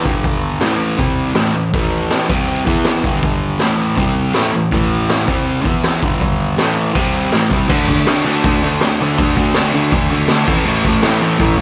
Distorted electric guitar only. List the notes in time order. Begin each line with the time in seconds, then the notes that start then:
0.05 G2 D3 G3
0.61 A2 E3 A3
0.99 C3 G3 C4
1.35 A2 E3 A3
1.55 A2 E3
1.74 A2 E3 A3
2.30 C3 G3 C4
2.66 E3 B3 E4
3.04 G2 D3 G3
3.61 A2 E3 A3
3.97 C3 G3 C4
4.34 A2 E3 A3
4.53 A2 E3
4.71 A2 E3 A3
5.27 C3 G3 C4
5.65 E3 B3 E4
6.03 G2 D3 G3
6.58 A2 E3 A3
6.95 C3 G3 C4
7.32 A2 E3 A3
7.51 C3 G3 C4
7.69 D3 A3 D4
7.88 D3 A3 D4
8.07 D3 A3 D4
8.25 D3 A3 D4
8.44 D3 A3 D4
8.63 D3 A3 D4
8.83 D3 A3 D4
9.00 D3 A3 D4
9.18 D3 A3 D4
9.37 D3 A3 D4
9.55 D3 A3 D4
9.73 D3 A3 D4
9.93 D3 A3 D4
10.11 D3 A3 D4
10.29 D3 A3 D4
10.47 A2 E3 A3
10.66 A2 E3 A3
10.85 A2 E3 A3
11.03 A2 E3 A3
11.22 A2 E3 A3
11.39 A2 E3 A3
11.58 A2